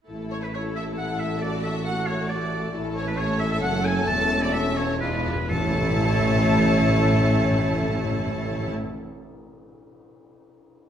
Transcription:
0.09 2.70 A1 soft
0.09 2.70 A2 soft
0.09 2.70 A3 soft
0.09 0.52 A3 soft
0.09 1.39 E4 soft
0.09 0.52 E4 soft
0.09 2.70 A4 soft
0.31 0.45 C#5 medium
0.31 0.36 C#5 medium
0.43 0.48 B4 soft
0.43 0.56 B4 medium
0.54 1.41 A3 soft
0.54 1.42 E4 soft
0.54 0.62 C#5 soft
0.54 0.75 C#5 medium
0.76 0.86 E5 medium
0.76 0.84 E5 medium
0.98 1.21 F#5 medium
0.98 1.20 F#5 medium
1.19 1.41 E5 medium
1.19 1.42 E5 medium
1.41 1.85 A3 medium
1.41 2.70 F#4 medium
1.41 1.85 F#4 medium
1.41 1.64 D5 medium
1.41 1.52 D5 medium
1.63 1.86 E5 medium
1.63 1.73 E5 medium
1.85 2.29 A3 medium
1.85 2.29 F#4 medium
1.85 2.07 F#5 medium
1.85 2.08 F#5 medium
2.07 2.29 C#5 medium
2.07 2.31 C#5 medium
2.30 2.72 A3 medium
2.30 2.73 F#4 medium
2.30 2.74 D5 medium
2.73 3.61 A1 medium
2.73 3.64 A1 medium
2.73 3.61 A2 medium
2.73 3.16 A3 medium
2.73 4.98 A3 medium
2.73 4.98 C#4 medium
2.73 3.16 E4 medium
2.73 4.98 A4 medium
2.95 3.06 C#5 medium
2.95 3.07 C#5 medium
3.07 3.18 B4 medium
3.07 3.19 B4 medium
3.17 3.61 A3 medium
3.17 3.61 E4 medium
3.17 3.39 C#5 loud
3.17 3.41 C#5 medium
3.39 3.51 E5 loud
3.39 3.51 E5 medium
3.52 3.57 E5 medium
3.52 3.63 E5 medium
3.62 4.08 F#1 medium
3.62 4.07 F#1 medium
3.62 4.08 F#2 medium
3.62 4.05 A3 medium
3.62 4.05 C#4 medium
3.62 3.87 F#5 loud
3.62 3.85 F#5 medium
3.85 4.07 G#5 loud
3.85 4.08 G#5 medium
4.07 5.26 E1 medium
4.07 4.74 E2 medium
4.07 5.27 E2 medium
4.07 4.52 A3 medium
4.07 4.52 C#4 medium
4.07 4.44 A5 medium
4.07 4.43 A5 medium
4.43 4.55 D5 medium
4.43 4.54 D5 medium
4.53 5.00 A3 medium
4.53 5.00 C#4 medium
4.53 4.79 E5 medium
4.53 4.78 E5 medium
4.77 5.00 C#5 medium
4.77 5.02 C#5 medium
5.00 5.09 E2 soft
5.00 5.26 G#3 medium
5.00 5.27 G#3 medium
5.00 5.25 D4 medium
5.00 5.27 D4 medium
5.00 5.27 F4 medium
5.00 5.49 B4 medium
5.00 5.50 B4 medium
5.10 5.17 E2 soft
5.18 5.26 E2 soft
5.27 5.34 E2 medium
5.35 5.43 E2 medium
5.50 8.72 A1 medium
5.50 8.72 A2 medium
5.50 5.58 A2 medium
5.50 8.72 A3 medium
5.50 8.73 A3 medium
5.50 8.73 C#4 medium
5.50 8.73 E4 medium
5.50 8.71 A4 medium
5.50 8.72 C#5 medium
5.50 8.72 A5 medium
5.50 tam-tam medium
5.59 5.66 A2 medium
5.66 5.74 A2 medium
5.74 5.81 A2 medium
5.81 5.89 A2 medium
5.89 5.96 A2 medium
5.97 6.05 A2 medium
6.05 6.12 A2 medium
6.12 6.20 A2 medium
6.20 6.28 A2 medium
6.28 6.35 A2 medium
6.35 6.43 A2 medium
6.43 6.51 A2 medium
6.51 6.59 A2 medium
6.59 6.66 A2 medium
6.67 6.74 A2 medium
6.74 6.82 A2 medium
6.82 6.89 A2 medium
6.89 6.97 A2 medium
6.97 7.05 A2 medium
7.05 7.13 A2 medium
7.13 7.21 A2 medium
7.21 7.28 A2 medium
7.28 7.36 A2 medium
7.36 7.44 A2 medium
7.44 7.51 A2 medium
7.51 7.59 A2 medium
7.59 7.66 A2 medium
7.66 7.74 A2 medium
7.74 7.81 A2 medium
7.81 7.88 A2 medium
7.89 7.97 A2 medium
7.97 8.04 A2 medium
8.04 8.12 A2 medium
8.12 8.19 A2 medium
8.19 8.27 A2 medium
8.27 8.34 A2 medium
8.34 8.42 A2 medium
8.42 8.50 A2 medium
8.51 8.58 A2 medium
8.59 8.66 A2 medium
8.66 8.74 A2 medium

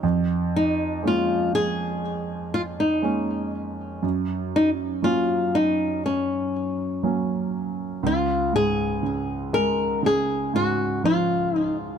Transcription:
0.03 3.99 F2 medium
0.56 1.06 D#4 medium
1.03 2.00 G#3 soft
1.03 2.00 A#3 soft
1.03 2.01 C#4 soft
1.07 1.55 F4 medium
1.55 2.54 G#4 medium
2.54 2.61 F4 medium
2.80 3.50 D#4 medium
3.02 4.00 G#3 soft
3.02 4.00 A#3 soft
3.02 4.00 C#4 soft
4.03 7.99 F#2 medium
4.56 4.69 D#4 medium
5.02 6.00 F#3 soft
5.02 6.00 A#3 soft
5.02 6.00 C#4 soft
5.02 5.55 F4 medium
5.55 6.05 D#4 medium
6.06 7.51 C#4 medium
7.03 8.00 F#3 soft
7.03 8.00 A#3 soft
7.03 8.01 C#4 soft
8.03 11.98 C#2 medium
8.03 8.55 F4 medium
8.53 10.49 G#2 soft
8.53 9.54 G#4 medium
9.03 10.01 C#3 soft
9.53 11.49 G#3 soft
9.53 10.00 A#4 medium
10.03 11.98 C#3 soft
10.03 10.55 G#4 medium
10.54 11.98 G#2 soft
10.54 11.05 F#4 medium
11.04 11.98 F3 soft
11.04 11.57 F4 medium
11.57 11.75 D#4 medium

